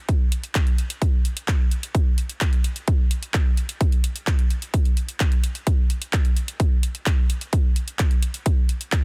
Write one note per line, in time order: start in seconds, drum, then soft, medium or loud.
0.09 kick loud
0.09 closed hi-hat medium
0.32 closed hi-hat medium
0.43 closed hi-hat soft
0.55 kick loud
0.55 clap loud
0.55 closed hi-hat medium
0.67 closed hi-hat soft
0.78 closed hi-hat medium
0.90 closed hi-hat soft
1.02 kick loud
1.02 closed hi-hat medium
1.25 closed hi-hat medium
1.37 closed hi-hat soft
1.48 kick loud
1.48 clap loud
1.48 closed hi-hat medium
1.71 closed hi-hat medium
1.83 closed hi-hat soft
1.95 kick loud
1.95 closed hi-hat medium
2.18 closed hi-hat medium
2.29 closed hi-hat soft
2.41 kick loud
2.41 clap loud
2.41 closed hi-hat medium
2.53 closed hi-hat soft
2.64 closed hi-hat medium
2.76 closed hi-hat soft
2.88 kick loud
2.88 closed hi-hat medium
3.11 closed hi-hat medium
3.23 closed hi-hat soft
3.34 kick loud
3.34 clap loud
3.34 closed hi-hat medium
3.57 closed hi-hat medium
3.69 closed hi-hat soft
3.81 kick loud
3.81 closed hi-hat medium
3.92 closed hi-hat soft
4.04 closed hi-hat medium
4.16 closed hi-hat soft
4.27 kick loud
4.27 clap loud
4.27 closed hi-hat medium
4.39 closed hi-hat soft
4.50 closed hi-hat medium
4.62 closed hi-hat soft
4.74 kick loud
4.74 closed hi-hat medium
4.85 closed hi-hat soft
4.97 closed hi-hat medium
5.09 closed hi-hat soft
5.20 kick loud
5.20 clap loud
5.20 closed hi-hat medium
5.32 closed hi-hat soft
5.44 closed hi-hat medium
5.55 closed hi-hat soft
5.67 kick loud
5.67 closed hi-hat medium
5.90 closed hi-hat medium
6.02 closed hi-hat soft
6.13 kick loud
6.13 clap loud
6.13 closed hi-hat medium
6.25 closed hi-hat soft
6.37 closed hi-hat medium
6.48 closed hi-hat soft
6.60 kick loud
6.60 closed hi-hat medium
6.83 closed hi-hat medium
6.95 closed hi-hat soft
7.06 kick loud
7.06 clap loud
7.06 closed hi-hat medium
7.30 closed hi-hat medium
7.41 closed hi-hat soft
7.53 kick loud
7.53 closed hi-hat medium
7.76 closed hi-hat medium
7.88 closed hi-hat soft
7.99 kick loud
7.99 clap loud
7.99 closed hi-hat medium
8.11 closed hi-hat soft
8.22 closed hi-hat medium
8.34 closed hi-hat soft
8.46 kick loud
8.46 closed hi-hat medium
8.69 closed hi-hat medium
8.81 closed hi-hat soft
8.92 kick loud
8.92 clap loud
8.92 closed hi-hat medium